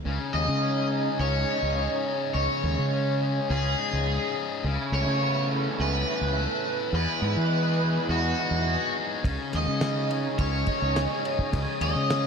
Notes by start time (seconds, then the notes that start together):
0.04 C#2 C#3 G#3 C#4 D#4
0.33 D#2 G#3 D#5
0.48 C#3
0.62 C#4
0.92 G#4
1.19 C#2 C#4 C#5
1.49 D#4
1.62 C#2
1.77 G#4
2.06 D#4
2.34 C#2 C#3 C#5
2.64 D#2 G#3
2.79 C#3
2.93 C#4
3.21 G#4
3.50 C#2 C#4 G#4
3.78 D#4
3.93 C#2
4.07 G#4
4.35 D#4
4.64 C#2 C#3 A3 C#4 E4
4.92 C#2 A3 C#5
5.06 C#3
5.21 B3
5.50 A4
5.79 C#2 B3 B4
6.09 E4
6.21 C#2
6.37 A4
6.66 E4
6.93 E2 E3 G#3 B3 B4
6.98 E4
7.22 G#2 E3
7.37 E3
7.53 B3
7.81 G#4
8.09 E2 B3 F#4
8.38 D#4
8.51 E2
8.67 G#4
8.95 D#4
9.24 C#2 C#3 G#3 C#4 D#4 C#5 D#5 G#5 D#6, kick, ride
9.52 D#2 G#3 D#5, snare, ride
9.68 C#3
9.81 C#4, snare, ride
10.09 G#4, ride
10.38 C#2 C#4 C#5, kick, ride
10.66 D#4, kick, ride
10.82 C#2
10.95 G#4, snare, ride
11.24 D#4, ride
11.39 kick
11.52 C#2 C#3, kick, ride
11.81 D#2 G#3 D#5, ride
11.96 C#3
12.09 C#4, snare, ride